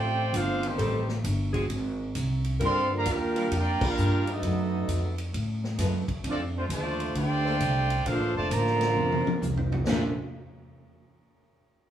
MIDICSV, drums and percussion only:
0, 0, Header, 1, 2, 480
1, 0, Start_track
1, 0, Key_signature, -2, "major"
1, 0, Tempo, 453858
1, 837, Time_signature, 4, 2, 24, 8
1, 12586, End_track
2, 0, Start_track
2, 0, Title_t, "Drums"
2, 354, Note_on_c, 9, 36, 30
2, 357, Note_on_c, 9, 44, 66
2, 357, Note_on_c, 9, 51, 90
2, 460, Note_off_c, 9, 36, 0
2, 462, Note_off_c, 9, 44, 0
2, 462, Note_off_c, 9, 51, 0
2, 667, Note_on_c, 9, 51, 58
2, 772, Note_off_c, 9, 51, 0
2, 834, Note_on_c, 9, 36, 25
2, 836, Note_on_c, 9, 51, 68
2, 940, Note_off_c, 9, 36, 0
2, 942, Note_off_c, 9, 51, 0
2, 1150, Note_on_c, 9, 38, 53
2, 1256, Note_off_c, 9, 38, 0
2, 1315, Note_on_c, 9, 44, 66
2, 1315, Note_on_c, 9, 51, 88
2, 1316, Note_on_c, 9, 36, 29
2, 1421, Note_off_c, 9, 44, 0
2, 1421, Note_off_c, 9, 51, 0
2, 1422, Note_off_c, 9, 36, 0
2, 1628, Note_on_c, 9, 51, 58
2, 1629, Note_on_c, 9, 36, 54
2, 1734, Note_off_c, 9, 36, 0
2, 1734, Note_off_c, 9, 51, 0
2, 1794, Note_on_c, 9, 51, 68
2, 1796, Note_on_c, 9, 36, 19
2, 1900, Note_off_c, 9, 51, 0
2, 1901, Note_off_c, 9, 36, 0
2, 2273, Note_on_c, 9, 44, 64
2, 2273, Note_on_c, 9, 51, 83
2, 2276, Note_on_c, 9, 36, 24
2, 2379, Note_off_c, 9, 44, 0
2, 2379, Note_off_c, 9, 51, 0
2, 2382, Note_off_c, 9, 36, 0
2, 2585, Note_on_c, 9, 51, 58
2, 2691, Note_off_c, 9, 51, 0
2, 2755, Note_on_c, 9, 51, 70
2, 2757, Note_on_c, 9, 36, 23
2, 2860, Note_off_c, 9, 51, 0
2, 2863, Note_off_c, 9, 36, 0
2, 3230, Note_on_c, 9, 44, 72
2, 3230, Note_on_c, 9, 51, 86
2, 3237, Note_on_c, 9, 36, 21
2, 3336, Note_off_c, 9, 44, 0
2, 3336, Note_off_c, 9, 51, 0
2, 3343, Note_off_c, 9, 36, 0
2, 3552, Note_on_c, 9, 51, 58
2, 3658, Note_off_c, 9, 51, 0
2, 3718, Note_on_c, 9, 51, 81
2, 3720, Note_on_c, 9, 36, 29
2, 3823, Note_off_c, 9, 51, 0
2, 3826, Note_off_c, 9, 36, 0
2, 4031, Note_on_c, 9, 49, 94
2, 4033, Note_on_c, 9, 36, 100
2, 4137, Note_off_c, 9, 49, 0
2, 4139, Note_off_c, 9, 36, 0
2, 4202, Note_on_c, 9, 44, 65
2, 4308, Note_off_c, 9, 44, 0
2, 4518, Note_on_c, 9, 51, 56
2, 4624, Note_off_c, 9, 51, 0
2, 4681, Note_on_c, 9, 36, 25
2, 4684, Note_on_c, 9, 51, 69
2, 4787, Note_off_c, 9, 36, 0
2, 4789, Note_off_c, 9, 51, 0
2, 5163, Note_on_c, 9, 36, 21
2, 5167, Note_on_c, 9, 44, 68
2, 5167, Note_on_c, 9, 51, 79
2, 5268, Note_off_c, 9, 36, 0
2, 5273, Note_off_c, 9, 44, 0
2, 5273, Note_off_c, 9, 51, 0
2, 5480, Note_on_c, 9, 51, 60
2, 5586, Note_off_c, 9, 51, 0
2, 5642, Note_on_c, 9, 36, 26
2, 5648, Note_on_c, 9, 51, 74
2, 5748, Note_off_c, 9, 36, 0
2, 5754, Note_off_c, 9, 51, 0
2, 5965, Note_on_c, 9, 38, 45
2, 6071, Note_off_c, 9, 38, 0
2, 6117, Note_on_c, 9, 38, 43
2, 6118, Note_on_c, 9, 44, 71
2, 6118, Note_on_c, 9, 51, 88
2, 6121, Note_on_c, 9, 36, 23
2, 6223, Note_off_c, 9, 38, 0
2, 6224, Note_off_c, 9, 44, 0
2, 6224, Note_off_c, 9, 51, 0
2, 6227, Note_off_c, 9, 36, 0
2, 6433, Note_on_c, 9, 36, 60
2, 6435, Note_on_c, 9, 51, 53
2, 6539, Note_off_c, 9, 36, 0
2, 6540, Note_off_c, 9, 51, 0
2, 6600, Note_on_c, 9, 36, 21
2, 6600, Note_on_c, 9, 51, 79
2, 6705, Note_off_c, 9, 51, 0
2, 6706, Note_off_c, 9, 36, 0
2, 7081, Note_on_c, 9, 36, 28
2, 7086, Note_on_c, 9, 44, 65
2, 7086, Note_on_c, 9, 51, 86
2, 7187, Note_off_c, 9, 36, 0
2, 7192, Note_off_c, 9, 44, 0
2, 7192, Note_off_c, 9, 51, 0
2, 7402, Note_on_c, 9, 51, 57
2, 7508, Note_off_c, 9, 51, 0
2, 7561, Note_on_c, 9, 36, 22
2, 7565, Note_on_c, 9, 51, 69
2, 7667, Note_off_c, 9, 36, 0
2, 7671, Note_off_c, 9, 51, 0
2, 8041, Note_on_c, 9, 36, 28
2, 8042, Note_on_c, 9, 44, 66
2, 8042, Note_on_c, 9, 51, 85
2, 8147, Note_off_c, 9, 36, 0
2, 8148, Note_off_c, 9, 44, 0
2, 8148, Note_off_c, 9, 51, 0
2, 8356, Note_on_c, 9, 51, 54
2, 8462, Note_off_c, 9, 51, 0
2, 8522, Note_on_c, 9, 36, 21
2, 8522, Note_on_c, 9, 51, 72
2, 8628, Note_off_c, 9, 36, 0
2, 8628, Note_off_c, 9, 51, 0
2, 9001, Note_on_c, 9, 36, 21
2, 9001, Note_on_c, 9, 44, 73
2, 9001, Note_on_c, 9, 51, 84
2, 9106, Note_off_c, 9, 44, 0
2, 9106, Note_off_c, 9, 51, 0
2, 9107, Note_off_c, 9, 36, 0
2, 9162, Note_on_c, 9, 38, 34
2, 9268, Note_off_c, 9, 38, 0
2, 9314, Note_on_c, 9, 51, 58
2, 9322, Note_on_c, 9, 38, 57
2, 9420, Note_off_c, 9, 51, 0
2, 9428, Note_off_c, 9, 38, 0
2, 9483, Note_on_c, 9, 48, 57
2, 9589, Note_off_c, 9, 48, 0
2, 9648, Note_on_c, 9, 48, 68
2, 9753, Note_off_c, 9, 48, 0
2, 9804, Note_on_c, 9, 48, 90
2, 9909, Note_off_c, 9, 48, 0
2, 9963, Note_on_c, 9, 43, 78
2, 9964, Note_on_c, 9, 44, 70
2, 10069, Note_off_c, 9, 43, 0
2, 10070, Note_off_c, 9, 44, 0
2, 10124, Note_on_c, 9, 43, 85
2, 10230, Note_off_c, 9, 43, 0
2, 10281, Note_on_c, 9, 43, 101
2, 10387, Note_off_c, 9, 43, 0
2, 10436, Note_on_c, 9, 38, 108
2, 10436, Note_on_c, 9, 43, 102
2, 10436, Note_on_c, 9, 57, 83
2, 10542, Note_off_c, 9, 38, 0
2, 10542, Note_off_c, 9, 43, 0
2, 10542, Note_off_c, 9, 57, 0
2, 12586, End_track
0, 0, End_of_file